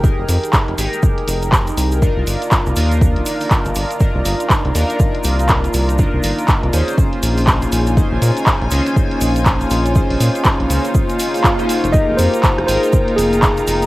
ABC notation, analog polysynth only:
X:1
M:4/4
L:1/16
Q:"Swing 16ths" 1/4=121
K:Fm
V:1 name="Analog polysynth"
[EGAB]6 [EGAB]8- [EGAB]2 | [=DEFB]6 [DEFB]8- [DEFB]2 | [=DEFB]6 [DEFB]8- [DEFB]2 | [=DEFB]6 [_DEAc]8- [DEAc]2 |
[DEAc]6 [DEAc]8- [DEAc]2 | [DEAc]6 [DEAc]6- [DEAc] [DEAc]3 | [EGAB]6 [EABg]8- [EABg]2 |]